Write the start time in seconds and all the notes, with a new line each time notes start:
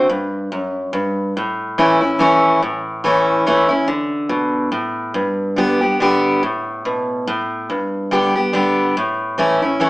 0.09 G2
0.52 F#2
0.93 G2
1.37 A2
1.78 E3 A3 C#4 E4
2.01 C#4 E4
2.19 E3 A3 C#4 E4
2.62 A2
3.04 E3 A3 C#4 E4
3.46 E3 A3 C#4 E4
3.69 C#4 E4
3.88 D3
4.29 B2
4.72 A2
5.14 G2
5.56 D3 G3 B3 G4
5.81 B3 G4
6.00 D3 G3 B3 G4
6.43 A2
6.85 B2
7.27 A2
7.70 G2
8.11 D3 G3 B3 G4
8.36 B3 G4
8.53 D3 G3 B3 G4
8.97 A2
9.38 E3 A3 C#4 E4
9.62 C#4 E4
9.80 E3 A3 C#4 E4